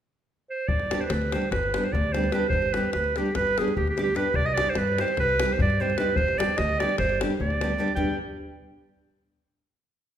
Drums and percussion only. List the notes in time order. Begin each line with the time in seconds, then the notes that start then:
0.68 davul low
0.80 davul high
0.91 davul high
1.02 davul high
1.10 davul high
1.22 davul high
1.32 davul high
1.42 davul high
1.52 davul high, davul low
1.63 davul high
1.74 davul high
1.84 davul high
1.93 davul low
2.04 davul high
2.15 davul high
2.24 davul high
2.32 davul high
2.50 davul low
2.62 davul high
2.74 davul high
2.83 davul high
2.93 davul high
3.04 davul high
3.16 davul high
3.26 davul high
3.35 davul high, davul low
3.47 davul high
3.58 davul high
3.68 davul high
3.77 davul low
3.87 davul high
3.98 davul high
4.07 davul high
4.16 davul high
4.34 davul low
4.46 davul high
4.58 davul high
4.66 davul high
4.75 davul high
4.87 davul high
4.98 davul high
5.08 davul high
5.17 davul high, davul low
5.29 davul high
5.40 davul high
5.50 davul high
5.59 davul low
5.70 davul high
5.90 davul high
5.98 davul high
6.16 davul low
6.28 davul high
6.40 davul high
6.49 davul high
6.58 davul high
6.69 davul high
6.80 davul high
6.89 davul high
6.98 davul high, davul low
7.09 davul high
7.21 davul high
7.30 davul high
7.40 davul low
7.50 davul high
7.61 davul high
7.70 davul high
7.88 davul high
7.97 davul low